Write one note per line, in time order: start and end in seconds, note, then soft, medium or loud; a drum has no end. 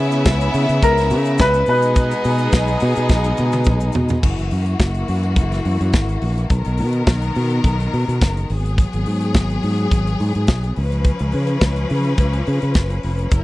0.00 0.28 C#3 medium
0.00 1.65 C#3 medium
0.00 1.63 B3 medium
0.00 1.65 B3 medium
0.00 1.64 C#4 medium
0.00 1.66 E4 medium
0.00 0.50 G#4 medium
0.00 1.64 E5 medium
0.12 closed hi-hat medium
0.12 shaker medium
0.25 0.48 C#2 medium
0.25 kick loud
0.25 snare loud
0.25 closed hi-hat medium
0.25 shaker medium
0.41 closed hi-hat medium
0.41 shaker medium
0.54 0.66 C#3 loud
0.54 open hi-hat medium
0.54 shaker medium
0.69 0.80 C#3 medium
0.69 closed hi-hat soft
0.69 shaker medium
0.83 1.13 C#2 loud
0.83 1.41 A#4 loud
0.83 kick loud
0.83 closed hi-hat medium
0.83 shaker medium
0.97 snare soft
0.97 closed hi-hat medium
0.97 shaker medium
1.10 1.41 C#3 loud
1.10 open hi-hat medium
1.10 shaker medium
1.25 closed hi-hat medium
1.25 shaker medium
1.38 1.62 C#2 loud
1.38 1.68 B4 loud
1.38 kick loud
1.38 snare loud
1.38 closed hi-hat medium
1.38 shaker medium
1.54 closed hi-hat soft
1.54 shaker medium
1.66 2.12 B2 medium
1.66 4.21 B2 medium
1.66 4.21 G#3 medium
1.66 4.19 B3 medium
1.66 4.21 D#4 medium
1.66 4.19 G#4 medium
1.66 3.63 B4 loud
1.66 4.19 D#5 medium
1.66 open hi-hat medium
1.66 shaker medium
1.82 closed hi-hat soft
1.82 shaker medium
1.96 kick loud
1.96 closed hi-hat medium
1.96 shaker medium
2.11 closed hi-hat soft
2.11 shaker medium
2.24 2.47 B2 medium
2.24 open hi-hat medium
2.24 shaker medium
2.38 closed hi-hat medium
2.38 shaker medium
2.52 2.75 B1 medium
2.52 kick loud
2.52 snare medium
2.52 closed hi-hat medium
2.52 shaker medium
2.67 closed hi-hat medium
2.67 shaker soft
2.80 2.94 B2 loud
2.80 open hi-hat medium
2.80 shaker medium
2.96 3.11 B2 medium
2.96 closed hi-hat soft
2.96 shaker medium
3.09 3.32 B1 loud
3.09 kick loud
3.09 snare medium
3.09 shaker medium
3.24 shaker medium
3.37 3.68 B2 medium
3.37 high tom medium
3.37 shaker medium
3.52 high tom medium
3.52 shaker medium
3.65 3.89 B1 loud
3.65 kick loud
3.65 mid tom medium
3.65 shaker medium
3.80 shaker medium
3.92 4.17 B2 medium
3.92 floor tom loud
3.92 shaker medium
4.09 floor tom loud
4.09 shaker medium
4.23 4.35 F#1 loud
4.23 6.48 E3 medium
4.23 6.49 A#3 medium
4.23 6.48 F#4 medium
4.23 kick loud
4.23 crash medium
4.39 4.49 F#1 medium
4.39 closed hi-hat soft
4.51 4.74 F#2 medium
4.51 open hi-hat medium
4.66 closed hi-hat soft
4.79 5.02 F#1 loud
4.79 kick loud
4.79 snare loud
4.79 closed hi-hat medium
4.95 closed hi-hat medium
5.08 5.38 F#2 medium
5.08 open hi-hat medium
5.23 closed hi-hat soft
5.36 5.59 F#1 medium
5.36 kick loud
5.36 closed hi-hat medium
5.52 snare soft
5.52 closed hi-hat medium
5.65 5.77 F#2 medium
5.65 open hi-hat medium
5.81 5.91 F#2 medium
5.81 closed hi-hat medium
5.93 6.16 G#1 medium
5.93 kick loud
5.93 snare loud
5.93 closed hi-hat medium
6.09 closed hi-hat soft
6.22 6.44 A#1 medium
6.22 open hi-hat medium
6.38 closed hi-hat medium
6.50 6.62 B1 loud
6.50 8.47 D#3 medium
6.50 8.47 B3 medium
6.50 8.47 A#4 medium
6.50 kick loud
6.50 closed hi-hat medium
6.65 6.81 B1 medium
6.65 closed hi-hat soft
6.78 7.01 B2 medium
6.78 open hi-hat medium
6.93 closed hi-hat medium
7.07 7.30 B1 medium
7.07 kick loud
7.07 snare loud
7.07 closed hi-hat medium
7.22 closed hi-hat medium
7.35 7.58 B2 loud
7.35 open hi-hat medium
7.50 closed hi-hat soft
7.64 7.86 B1 loud
7.64 kick loud
7.64 closed hi-hat medium
7.80 closed hi-hat soft
7.93 8.05 B2 medium
7.93 open hi-hat medium
8.08 8.18 B2 medium
8.08 closed hi-hat medium
8.21 8.44 F#1 medium
8.21 kick loud
8.21 snare loud
8.21 closed hi-hat medium
8.37 closed hi-hat soft
8.50 8.84 G#1 medium
8.50 10.75 F#3 medium
8.50 10.75 B3 medium
8.50 10.75 G#4 medium
8.50 open hi-hat medium
8.66 closed hi-hat soft
8.78 kick loud
8.78 closed hi-hat medium
8.93 9.04 G#1 medium
8.93 closed hi-hat soft
9.06 9.36 G#2 medium
9.06 open hi-hat medium
9.21 closed hi-hat medium
9.34 9.57 G#1 medium
9.34 kick loud
9.34 snare loud
9.34 closed hi-hat medium
9.50 closed hi-hat soft
9.63 9.86 G#2 medium
9.63 open hi-hat medium
9.78 closed hi-hat soft
9.91 10.14 G#1 loud
9.91 kick loud
9.91 closed hi-hat medium
10.07 closed hi-hat soft
10.20 10.32 G#2 medium
10.20 open hi-hat medium
10.35 10.46 G#2 medium
10.35 closed hi-hat soft
10.47 10.71 B1 medium
10.47 kick loud
10.47 snare loud
10.47 closed hi-hat medium
10.63 closed hi-hat soft
10.76 11.11 C#2 medium
10.76 13.29 F3 medium
10.76 13.29 C#4 medium
10.76 13.29 B4 medium
10.76 open hi-hat medium
10.92 closed hi-hat soft
11.04 kick loud
11.04 closed hi-hat medium
11.19 11.31 C#2 medium
11.19 closed hi-hat soft
11.32 11.56 C#3 medium
11.32 open hi-hat medium
11.47 closed hi-hat medium
11.61 11.84 C#2 loud
11.61 kick loud
11.61 snare loud
11.61 closed hi-hat medium
11.76 closed hi-hat soft
11.90 12.13 C#3 loud
11.90 open hi-hat medium
12.04 closed hi-hat soft
12.18 12.41 C#2 loud
12.18 kick loud
12.18 closed hi-hat medium
12.33 closed hi-hat soft
12.47 12.59 C#3 loud
12.47 open hi-hat medium
12.62 12.73 C#3 medium
12.62 closed hi-hat medium
12.74 12.98 F#1 medium
12.74 kick loud
12.74 snare medium
12.74 closed hi-hat medium
12.90 closed hi-hat soft
13.03 13.26 F1 medium
13.03 open hi-hat medium
13.19 closed hi-hat medium
13.31 13.44 F#1 loud
13.31 13.44 F#3 medium
13.31 13.44 E4 medium
13.31 13.44 A#4 medium
13.31 kick loud
13.31 closed hi-hat medium
13.31 shaker medium